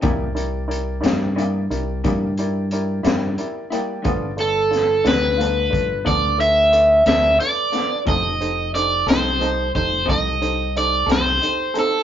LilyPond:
<<
  \new Staff \with { instrumentName = "Overdriven electric guitar" } { \time 12/8 \key g \dorian \tempo 4. = 60 r1. | r8 a'4 b'4. d''8 e''4 e''8 d''4 | ees''4 d''8 c''4 c''8 ees''4 d''8 c''4 a'8 | }
  \new Staff \with { instrumentName = "Upright piano" } { \time 12/8 \key g \dorian <e' g' bes' d''>8 <e' g' bes' d''>8 <e' g' bes' d''>8 <e' g' bes' d''>8 <e' g' bes' d''>8 <e' g' bes' d''>8 <e' g' bes' d''>8 <e' g' bes' d''>8 <e' g' bes' d''>8 <e' g' bes' d''>8 <e' g' bes' d'' e''>8 <e' g' bes' d'' g''>8 | <f' a' b' d''>8 <f' a' b' d''>8 <f' a' b' d''>8 <f' a' b' d''>8 <f' a' b' f''>8 <f' a' b' d''>8 <f' a' b' d''>8 <f' a' b' e''>8 <f' a' b' d''>8 <f' a' b' d''>8 <f' a' b' d''>8 <f' a' b' d''>8 | <ees' g' a' c''>8 <ees' g' a' c''>8 <ees' g' a' c''>8 <ees' g' a' c''>8 <ees' g' a' c''>8 <ees' g' a' c''>8 <ees' g' a' c''>8 <ees' g' a' c''>8 <ees' g' a' c''>8 <ees' g' a' c''>8 <ees' g' a' c''>8 <ees' g' a' c''>8 | }
  \new Staff \with { instrumentName = "Clean electric guitar" } { \time 12/8 \key g \dorian <c g bes e'>8 r4 <g bes e'>8 <c g bes e'>8 r8 <c g bes e'>8 r4 <g bes e'>8 r8 <g bes e'>8 | <g, f b d'>8 r4 <f b d'>8 <g, f b d'>8 r8 <g, f b d'>8 r4 <f b d'>8 r8 <f b d'>8 | <f c' ees' a'>8 r4 <c' ees' a'>8 <f c' ees' a'>8 r8 <f c' ees' a'>8 r4 <c' ees' a'>8 r8 <c' ees' a'>8 | }
  \new Staff \with { instrumentName = "Fingered electric bass" } { \clef bass \time 12/8 \key g \dorian c,4. g,4 c,8 g,4. g,8 r4 | g,,4. d,4 g,,8 d,4. d,8 r4 | f,,4. c,4 f,,8 c,4. c,8 r4 | }
  \new DrumStaff \with { instrumentName = "Drums" } \drummode { \time 12/8 <hh bd>8 hh8 hh8 <hh sn>8 hh8 hh8 <hh bd>8 hh8 hh8 <hh sn>8 hh8 hh8 | <hh bd>8 hh8 <hh sn>8 <hh sn>8 hh8 <hh bd>8 <hh bd>8 hh8 hh8 <hh sn>8 hh8 <hh sn>8 | <hh bd>8 hh8 hh8 <hh sn>8 hh8 <hh bd>8 <hh bd>8 hh8 hh8 <hh sn>8 hh8 hh8 | }
>>